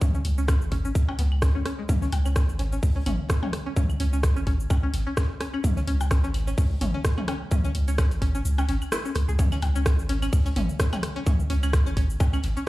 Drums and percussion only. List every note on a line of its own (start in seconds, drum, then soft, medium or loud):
0.01 kick loud
0.01 closed hi-hat medium
0.01 mid tom medium
0.01 cabasa medium
0.15 cabasa soft
0.24 closed hi-hat medium
0.24 open hi-hat loud
0.38 cabasa soft
0.48 kick loud
0.48 cross-stick medium
0.48 snare loud
0.48 closed hi-hat medium
0.48 cabasa medium
0.48 claves soft
0.61 cabasa soft
0.71 kick medium
0.71 closed hi-hat medium
0.71 open hi-hat medium
0.85 cabasa soft
0.95 kick loud
0.95 closed hi-hat medium
0.95 cabasa medium
1.09 percussion blips medium
1.19 snare medium
1.19 closed hi-hat medium
1.19 open hi-hat loud
1.32 claves soft
1.42 kick loud
1.42 cross-stick medium
1.42 snare loud
1.42 closed hi-hat medium
1.42 cabasa medium
1.66 cross-stick medium
1.66 closed hi-hat medium
1.66 open hi-hat loud
1.89 kick loud
1.89 closed hi-hat loud
1.89 mid tom medium
1.89 cabasa medium
2.02 snare soft
2.02 cabasa soft
2.12 closed hi-hat medium
2.12 open hi-hat medium
2.12 percussion blips medium
2.26 closed hi-hat soft
2.26 cabasa soft
2.26 claves soft
2.36 kick loud
2.36 cross-stick medium
2.36 snare loud
2.36 closed hi-hat medium
2.36 cabasa medium
2.49 cabasa soft
2.59 snare soft
2.59 closed hi-hat medium
2.59 open hi-hat medium
2.72 closed hi-hat soft
2.72 cabasa soft
2.83 kick loud
2.83 open hi-hat medium
2.83 cabasa medium
3.06 closed hi-hat medium
3.06 mid tom medium
3.06 open hi-hat medium
3.06 claves soft
3.29 kick loud
3.29 cross-stick medium
3.29 snare loud
3.29 closed hi-hat medium
3.29 cabasa medium
3.43 mid tom medium
3.43 percussion blips medium
3.53 cross-stick medium
3.53 closed hi-hat medium
3.53 open hi-hat loud
3.76 kick loud
3.76 closed hi-hat medium
3.76 mid tom medium
3.76 cabasa medium
3.90 cabasa soft
3.90 claves soft
4.00 closed hi-hat medium
4.00 open hi-hat medium
4.13 cabasa soft
4.23 kick loud
4.23 cross-stick medium
4.23 snare loud
4.23 closed hi-hat medium
4.23 cabasa medium
4.36 cabasa soft
4.47 kick medium
4.47 closed hi-hat medium
4.47 open hi-hat medium
4.60 cabasa soft
4.70 kick loud
4.70 closed hi-hat medium
4.70 percussion blips medium
4.70 cabasa medium
4.70 claves soft
4.94 snare medium
4.94 closed hi-hat medium
4.94 open hi-hat medium
5.17 kick loud
5.17 cross-stick medium
5.17 snare loud
5.17 closed hi-hat medium
5.17 cabasa medium
5.40 cross-stick medium
5.40 closed hi-hat medium
5.40 open hi-hat medium
5.54 claves soft
5.64 kick loud
5.64 closed hi-hat medium
5.64 mid tom medium
5.64 cabasa medium
5.76 snare soft
5.76 cabasa soft
5.88 closed hi-hat medium
5.88 open hi-hat medium
6.01 closed hi-hat soft
6.01 percussion blips medium
6.01 cabasa soft
6.11 kick loud
6.11 cross-stick medium
6.11 snare loud
6.11 closed hi-hat medium
6.11 cabasa medium
6.24 cabasa soft
6.34 snare soft
6.34 closed hi-hat medium
6.34 open hi-hat medium
6.34 claves soft
6.47 closed hi-hat soft
6.47 cabasa soft
6.57 kick loud
6.57 open hi-hat medium
6.57 cabasa medium
6.81 closed hi-hat medium
6.81 mid tom medium
6.81 open hi-hat medium
7.05 kick loud
7.05 cross-stick medium
7.05 snare loud
7.05 closed hi-hat medium
7.05 cabasa medium
7.18 mid tom medium
7.18 claves soft
7.28 cross-stick medium
7.28 closed hi-hat medium
7.28 open hi-hat medium
7.28 percussion blips medium
7.51 kick loud
7.51 closed hi-hat medium
7.51 mid tom loud
7.51 cabasa medium
7.65 cabasa soft
7.75 closed hi-hat medium
7.75 open hi-hat medium
7.88 open hi-hat soft
7.88 cabasa soft
7.98 kick loud
7.98 cross-stick medium
7.98 snare loud
7.98 closed hi-hat medium
7.98 cabasa medium
7.98 claves soft
8.11 open hi-hat soft
8.11 cabasa soft
8.22 kick medium
8.22 closed hi-hat medium
8.22 open hi-hat medium
8.35 cabasa soft
8.45 closed hi-hat medium
8.45 cabasa medium
8.58 percussion blips medium
8.58 cabasa soft
8.69 snare medium
8.69 closed hi-hat medium
8.69 open hi-hat medium
8.82 cabasa soft
8.82 claves soft
8.92 cross-stick loud
8.92 snare loud
8.92 closed hi-hat medium
8.92 cabasa medium
9.05 cabasa soft
9.15 cross-stick medium
9.15 closed hi-hat medium
9.15 open hi-hat medium
9.29 cabasa soft
9.39 kick loud
9.39 closed hi-hat medium
9.39 mid tom medium
9.39 cabasa medium
9.52 snare soft
9.52 cabasa soft
9.52 claves medium
9.62 closed hi-hat medium
9.62 open hi-hat medium
9.62 percussion blips medium
9.76 closed hi-hat soft
9.76 cabasa soft
9.86 kick loud
9.86 cross-stick loud
9.86 snare loud
9.86 closed hi-hat medium
9.86 cabasa medium
9.99 cabasa soft
10.09 snare soft
10.09 closed hi-hat medium
10.09 open hi-hat medium
10.22 closed hi-hat soft
10.22 cabasa soft
10.22 claves medium
10.33 kick loud
10.33 open hi-hat medium
10.33 cabasa medium
10.46 cabasa soft
10.56 closed hi-hat medium
10.56 mid tom loud
10.56 open hi-hat loud
10.69 cabasa soft
10.79 kick loud
10.79 cross-stick loud
10.79 snare loud
10.79 closed hi-hat medium
10.79 cabasa medium
10.93 mid tom medium
10.93 percussion blips medium
10.93 cabasa soft
10.93 claves medium
11.03 cross-stick medium
11.03 closed hi-hat medium
11.03 open hi-hat loud
11.27 kick loud
11.27 closed hi-hat medium
11.27 mid tom loud
11.27 cabasa medium
11.40 cabasa soft
11.50 closed hi-hat medium
11.50 open hi-hat loud
11.63 cabasa soft
11.63 claves medium
11.73 kick loud
11.73 cross-stick medium
11.73 snare loud
11.73 closed hi-hat loud
11.73 cabasa medium
11.86 cabasa soft
11.97 kick medium
11.97 closed hi-hat medium
11.97 open hi-hat loud
12.10 cabasa soft
12.20 kick loud
12.20 closed hi-hat loud
12.20 percussion blips medium
12.20 cabasa medium
12.33 cabasa soft
12.33 claves medium
12.43 snare medium
12.43 closed hi-hat medium
12.43 open hi-hat loud
12.57 cabasa soft